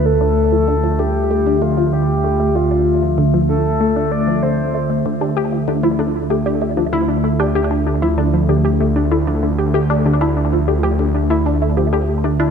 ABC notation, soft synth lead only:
X:1
M:4/4
L:1/8
Q:1/4=96
K:Dm
V:1 name="Soft synth lead"
A3 G2 F G2 | F2 z A2 d c2 | z8 | z8 |
z8 |]